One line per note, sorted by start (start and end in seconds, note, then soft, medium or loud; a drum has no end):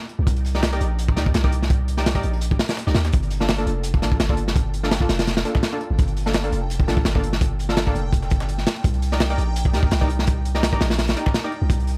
0.09 closed hi-hat medium
0.19 0.26 C2 loud
0.27 0.79 C2 loud
0.27 kick loud
0.27 closed hi-hat medium
0.36 closed hi-hat soft
0.45 closed hi-hat medium
0.45 open hi-hat medium
0.55 0.63 D#4 medium
0.55 0.63 G4 medium
0.55 0.63 A#4 medium
0.55 0.63 D5 loud
0.55 snare soft
0.63 snare loud
0.63 closed hi-hat medium
0.72 0.86 D#4 medium
0.72 0.86 G4 medium
0.72 0.86 A#4 medium
0.72 0.86 D5 loud
0.72 closed hi-hat soft
0.81 1.18 A#1 loud
0.81 closed hi-hat medium
0.99 closed hi-hat loud
0.99 closed hi-hat medium
1.08 kick loud
1.08 closed hi-hat soft
1.16 1.33 D#2 medium
1.16 1.26 D#4 medium
1.16 1.26 G4 medium
1.16 1.26 A#4 medium
1.16 1.26 D5 medium
1.16 snare medium
1.16 closed hi-hat medium
1.26 kick medium
1.34 2.22 C2 loud
1.34 snare loud
1.34 closed hi-hat medium
1.44 1.52 D#4 medium
1.44 1.52 G4 medium
1.44 1.52 A#4 medium
1.44 1.52 D5 loud
1.44 kick loud
1.52 closed hi-hat medium
1.62 snare soft
1.70 kick loud
1.70 closed hi-hat medium
1.88 closed hi-hat medium
1.97 2.06 D#4 medium
1.97 2.06 G4 medium
1.97 2.06 A#4 medium
1.97 2.06 D5 loud
1.97 snare soft
1.97 closed hi-hat soft
2.06 snare loud
2.06 closed hi-hat medium
2.06 open hi-hat medium
2.15 2.29 D#4 medium
2.15 2.29 G4 medium
2.15 2.29 A#4 medium
2.15 2.29 D5 loud
2.15 kick loud
2.15 closed hi-hat medium
2.23 2.58 A#1 medium
2.23 closed hi-hat medium
2.23 closed hi-hat soft
2.33 open hi-hat medium
2.41 closed hi-hat medium
2.51 kick medium
2.51 closed hi-hat soft
2.59 snare loud
2.59 closed hi-hat medium
2.59 open hi-hat medium
2.69 snare loud
2.69 closed hi-hat medium
2.77 snare loud
2.77 closed hi-hat medium
2.87 2.94 C2 medium
2.87 2.95 D#4 medium
2.87 2.95 G4 medium
2.87 2.95 A#4 medium
2.87 2.95 D5 loud
2.87 snare soft
2.95 3.11 D#2 loud
2.95 snare loud
2.95 closed hi-hat medium
3.05 snare loud
3.05 closed hi-hat medium
3.05 closed hi-hat soft
3.12 3.66 G1 loud
3.12 11.98 G5 loud
3.12 kick loud
3.12 closed hi-hat loud
3.12 closed hi-hat medium
3.23 closed hi-hat soft
3.30 closed hi-hat medium
3.30 open hi-hat medium
3.40 3.48 A#3 medium
3.40 3.48 D4 medium
3.40 3.48 F4 medium
3.40 3.48 A4 loud
3.40 snare soft
3.48 snare loud
3.48 closed hi-hat medium
3.58 3.72 A#3 medium
3.58 3.72 D4 medium
3.58 3.72 F4 medium
3.58 3.72 A4 loud
3.58 closed hi-hat soft
3.67 4.04 F1 medium
3.67 closed hi-hat medium
3.83 closed hi-hat loud
3.83 closed hi-hat medium
3.94 kick medium
3.94 closed hi-hat soft
4.02 4.19 A#1 loud
4.02 4.12 A#3 medium
4.02 4.12 D4 medium
4.02 4.12 F4 medium
4.02 4.12 A4 medium
4.02 snare medium
4.02 closed hi-hat medium
4.12 kick medium
4.20 5.08 G1 medium
4.20 snare loud
4.20 closed hi-hat medium
4.29 4.38 A#3 medium
4.29 4.38 D4 medium
4.29 4.38 F4 medium
4.29 4.38 A4 loud
4.29 kick medium
4.37 closed hi-hat medium
4.48 snare medium
4.56 kick loud
4.56 closed hi-hat medium
4.74 closed hi-hat medium
4.83 4.91 A#3 medium
4.83 4.91 D4 medium
4.83 4.91 F4 medium
4.83 4.91 A4 loud
4.83 snare soft
4.91 snare loud
4.91 closed hi-hat medium
4.91 closed hi-hat loud
5.01 5.15 A#3 medium
5.01 5.15 D4 medium
5.01 5.15 F4 medium
5.01 5.15 A4 loud
5.01 kick medium
5.09 5.44 F1 medium
5.09 snare loud
5.09 closed hi-hat medium
5.19 snare loud
5.19 closed hi-hat medium
5.27 snare loud
5.27 closed hi-hat medium
5.37 snare loud
5.37 snare medium
5.37 closed hi-hat medium
5.45 5.54 A#3 medium
5.45 5.54 D4 medium
5.45 5.54 F4 medium
5.45 5.54 A4 loud
5.45 closed hi-hat medium
5.55 kick medium
5.55 snare loud
5.63 snare loud
5.63 closed hi-hat medium
5.72 5.81 A#3 medium
5.72 5.81 D4 medium
5.72 5.81 F4 medium
5.72 5.81 A4 loud
5.81 closed hi-hat medium
5.90 5.98 G1 loud
5.98 6.51 G1 loud
5.98 kick loud
5.98 closed hi-hat medium
6.07 closed hi-hat soft
6.17 closed hi-hat medium
6.17 open hi-hat medium
6.26 6.34 A#3 loud
6.26 6.34 D4 medium
6.26 6.34 F4 medium
6.26 6.34 A4 loud
6.26 snare soft
6.33 snare loud
6.33 closed hi-hat medium
6.43 6.57 A#3 medium
6.43 6.57 D4 medium
6.43 6.57 F4 medium
6.43 6.57 A4 loud
6.43 closed hi-hat soft
6.52 6.89 F1 medium
6.52 closed hi-hat medium
6.70 closed hi-hat medium
6.80 kick medium
6.80 closed hi-hat soft
6.88 7.04 A#1 loud
6.88 6.97 A#3 medium
6.88 6.97 D4 medium
6.88 6.97 F4 medium
6.88 6.97 A4 medium
6.88 snare medium
6.88 closed hi-hat medium
6.97 kick loud
7.05 7.94 G1 medium
7.05 snare loud
7.05 closed hi-hat medium
7.05 closed hi-hat loud
7.15 7.23 A#3 medium
7.15 7.23 D4 medium
7.15 7.23 F4 medium
7.15 7.23 A4 loud
7.15 kick medium
7.23 closed hi-hat medium
7.33 snare medium
7.41 kick loud
7.41 closed hi-hat medium
7.59 closed hi-hat medium
7.69 7.77 A#3 medium
7.69 7.77 D4 medium
7.69 7.77 F4 medium
7.69 7.77 A4 loud
7.69 snare soft
7.77 snare loud
7.77 closed hi-hat medium
7.87 8.00 A#3 loud
7.87 8.00 D4 medium
7.87 8.00 F4 medium
7.87 8.00 A4 loud
7.87 kick medium
7.95 8.33 F1 loud
7.95 closed hi-hat medium
8.13 kick medium
8.13 closed hi-hat medium
8.22 snare medium
8.22 closed hi-hat soft
8.30 8.66 G1 loud
8.30 kick medium
8.30 closed hi-hat medium
8.40 snare loud
8.40 closed hi-hat soft
8.49 closed hi-hat medium
8.58 snare soft
8.66 snare loud
8.66 closed hi-hat medium
8.76 closed hi-hat soft
8.84 9.37 C2 loud
8.84 kick loud
8.84 closed hi-hat medium
8.94 closed hi-hat soft
9.02 closed hi-hat medium
9.02 open hi-hat medium
9.12 9.20 D#4 loud
9.12 9.20 G4 medium
9.12 9.20 A#4 medium
9.12 9.20 D5 loud
9.12 snare soft
9.20 snare loud
9.20 closed hi-hat medium
9.30 9.43 D#4 medium
9.30 9.43 G4 medium
9.30 9.43 A#4 medium
9.30 9.43 D5 loud
9.30 closed hi-hat soft
9.38 9.75 A#1 medium
9.38 closed hi-hat medium
9.56 closed hi-hat loud
9.56 closed hi-hat medium
9.65 kick medium
9.65 closed hi-hat soft
9.74 9.90 D#2 loud
9.74 9.83 D#4 medium
9.74 9.83 G4 medium
9.74 9.83 A#4 medium
9.74 9.83 D5 medium
9.74 snare medium
9.74 closed hi-hat medium
9.83 kick loud
9.91 10.80 C2 loud
9.91 snare loud
9.91 closed hi-hat medium
10.01 10.09 D#4 medium
10.01 10.09 G4 medium
10.01 10.09 A#4 medium
10.01 10.09 D5 loud
10.01 kick medium
10.10 closed hi-hat medium
10.19 snare medium
10.27 kick loud
10.27 closed hi-hat medium
10.45 closed hi-hat medium
10.55 10.63 D#4 loud
10.55 10.63 G4 medium
10.55 10.63 A#4 medium
10.55 10.63 D5 loud
10.55 snare soft
10.63 snare loud
10.63 closed hi-hat medium
10.63 closed hi-hat loud
10.73 10.86 D#4 medium
10.73 10.86 G4 medium
10.73 10.86 A#4 medium
10.73 10.86 D5 loud
10.73 kick loud
10.81 11.15 A#1 medium
10.81 snare loud
10.81 closed hi-hat medium
10.90 snare medium
10.90 closed hi-hat medium
10.99 snare loud
10.99 closed hi-hat medium
11.07 snare medium
11.07 snare loud
11.07 closed hi-hat medium
11.16 11.26 D#4 medium
11.16 11.26 G4 medium
11.16 11.26 A#4 medium
11.16 11.26 D5 medium
11.16 closed hi-hat medium
11.26 kick loud
11.26 snare loud
11.34 snare loud
11.34 closed hi-hat medium
11.44 11.52 D#4 medium
11.44 11.52 G4 medium
11.44 11.52 A#4 medium
11.44 11.52 D5 loud
11.52 closed hi-hat medium
11.62 11.69 C2 loud
11.70 11.98 C2 loud
11.70 kick loud
11.70 closed hi-hat medium
11.70 closed hi-hat loud
11.79 closed hi-hat soft
11.87 closed hi-hat medium
11.87 open hi-hat medium